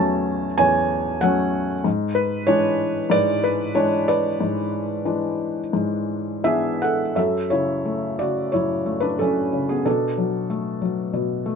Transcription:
0.00 0.59 E2 medium
0.00 1.22 F#3 soft
0.00 1.22 A3 soft
0.00 1.23 C#4 medium
0.00 0.59 C#5 medium
0.00 1.21 F#5 medium
0.00 0.58 G#5 medium
0.00 1.86 A5 medium
0.58 1.81 E2 medium
0.58 1.81 C#5 medium
0.58 1.24 G#5 loud
1.21 1.72 F#3 medium
1.21 1.72 A3 soft
1.21 1.73 C#4 medium
1.21 1.65 F#5 medium
1.84 3.08 G#2 medium
2.15 2.48 B4 medium
2.47 2.98 E3 soft
2.47 2.98 G#3 soft
2.47 2.99 D4 medium
2.47 3.12 C#5 medium
3.10 4.39 G#2 medium
3.10 3.42 B4 medium
3.10 3.44 D5 loud
3.44 3.77 B4 medium
3.75 4.27 E3 soft
3.75 4.27 G#3 soft
3.75 4.28 D4 medium
3.75 4.06 C#5 medium
4.08 6.42 B4 medium
4.08 6.41 D5 medium
4.40 5.72 G#2 medium
5.05 5.60 E3 soft
5.05 5.60 G#3 soft
5.05 5.60 D4 soft
5.73 7.13 G#2 medium
6.44 7.02 E3 soft
6.44 7.02 B3 soft
6.44 7.02 D4 soft
6.44 6.80 G#4 medium
6.44 6.83 E5 medium
6.82 7.16 A4 medium
6.82 7.18 F#5 medium
7.15 8.52 F#2 soft
7.15 7.50 A4 medium
7.15 7.52 E5 medium
7.50 8.17 C#3 soft
7.50 8.16 E4 medium
7.50 8.21 C#5 medium
7.86 8.84 A3 soft
8.19 9.49 C#3 soft
8.19 8.52 F#4 soft
8.19 8.54 D5 medium
8.52 9.18 F#2 soft
8.52 9.00 E4 medium
8.52 9.04 C#5 medium
8.86 9.82 A3 soft
9.00 9.18 D4 soft
9.00 9.19 B4 medium
9.19 9.83 F#2 soft
9.19 9.67 C#4 soft
9.19 9.70 A4 medium
9.53 9.85 C#3 soft
9.69 9.85 B3 soft
9.69 9.86 G#4 medium
9.85 11.12 B2 medium
9.85 10.46 D4 soft
9.85 10.46 A4 medium
10.18 10.80 F#3 soft
10.50 11.44 A3 soft
10.82 11.55 F#3 soft
11.13 11.55 B2 soft
11.46 11.55 A3 soft

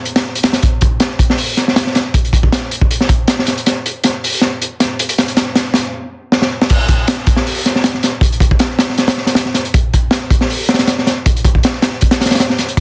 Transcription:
0.05 closed hi-hat medium
0.16 snare loud
0.16 closed hi-hat medium
0.35 closed hi-hat medium
0.43 snare loud
0.43 closed hi-hat medium
0.53 snare medium
0.53 closed hi-hat medium
0.62 kick loud
0.62 closed hi-hat medium
0.81 kick loud
0.81 closed hi-hat medium
1.00 snare loud
1.00 closed hi-hat medium
1.19 kick medium
1.19 closed hi-hat medium
1.30 snare medium
1.38 open hi-hat medium
1.57 snare soft
1.57 closed hi-hat medium
1.68 snare soft
1.76 snare loud
1.76 closed hi-hat medium
1.87 snare soft
1.95 snare medium
1.95 closed hi-hat medium
2.14 kick loud
2.14 closed hi-hat medium
2.25 closed hi-hat soft
2.33 kick medium
2.33 closed hi-hat medium
2.43 kick medium
2.52 snare loud
2.52 closed hi-hat medium
2.71 closed hi-hat medium
2.81 kick medium
2.91 closed hi-hat medium
3.01 snare medium
3.09 kick loud
3.09 closed hi-hat medium
3.28 snare loud
3.28 closed hi-hat medium
3.39 snare medium
3.46 snare soft
3.46 closed hi-hat medium
3.57 closed hi-hat soft
3.66 snare medium
3.66 closed hi-hat medium
3.86 closed hi-hat medium
4.04 snare soft
4.04 closed hi-hat loud
4.24 open hi-hat medium
4.41 snare medium
4.41 closed hi-hat medium
4.62 closed hi-hat medium
4.80 snare medium
4.80 closed hi-hat medium
4.99 closed hi-hat medium
5.09 closed hi-hat medium
5.18 snare medium
5.18 closed hi-hat medium
5.28 closed hi-hat soft
5.37 snare medium
5.37 closed hi-hat medium
5.55 snare medium
5.55 closed hi-hat medium
5.74 snare medium
5.74 closed hi-hat medium
6.32 snare medium
6.42 snare medium
6.62 snare medium
6.70 kick loud
6.70 closed hi-hat medium
6.70 crash loud
6.89 kick loud
6.89 closed hi-hat medium
7.08 snare loud
7.08 closed hi-hat medium
7.27 kick loud
7.27 closed hi-hat medium
7.36 snare medium
7.47 open hi-hat medium
7.66 snare soft
7.66 closed hi-hat medium
7.76 snare soft
7.84 snare loud
7.84 closed hi-hat medium
7.94 snare soft
8.03 snare medium
8.03 closed hi-hat medium
8.21 kick loud
8.21 closed hi-hat medium
8.32 closed hi-hat soft
8.40 kick loud
8.40 closed hi-hat medium
8.51 kick medium
8.59 snare loud
8.59 closed hi-hat medium
8.79 snare loud
8.79 closed hi-hat medium
8.89 snare soft
8.98 snare medium
8.98 closed hi-hat medium
9.08 snare loud
9.08 closed hi-hat medium
9.17 snare soft
9.27 snare soft
9.27 closed hi-hat medium
9.35 snare loud
9.35 closed hi-hat medium
9.45 snare soft
9.54 snare soft
9.54 closed hi-hat medium
9.65 closed hi-hat soft
9.74 kick loud
9.74 closed hi-hat medium
9.94 kick medium
9.94 closed hi-hat medium
10.11 snare loud
10.11 closed hi-hat medium
10.30 kick loud
10.30 closed hi-hat medium
10.41 snare medium
10.50 open hi-hat medium
10.69 snare medium
10.69 closed hi-hat medium
10.74 snare medium
10.74 closed hi-hat medium
10.79 snare loud
10.79 closed hi-hat medium
10.87 snare loud
10.87 closed hi-hat medium
10.99 snare soft
11.07 snare medium
11.07 closed hi-hat medium
11.26 kick loud
11.26 closed hi-hat medium
11.36 closed hi-hat soft
11.45 kick loud
11.45 closed hi-hat medium
11.55 kick medium
11.63 snare loud
11.63 closed hi-hat medium
11.82 snare loud
11.82 closed hi-hat medium
12.01 kick medium
12.01 closed hi-hat medium
12.11 snare loud
12.11 closed hi-hat medium
12.21 snare medium
12.21 closed hi-hat medium
12.25 snare medium
12.25 closed hi-hat medium
12.31 snare medium
12.31 closed hi-hat medium
12.35 snare loud
12.35 closed hi-hat medium
12.40 snare loud
12.40 closed hi-hat medium
12.50 snare medium
12.58 snare soft
12.58 closed hi-hat medium
12.68 closed hi-hat soft

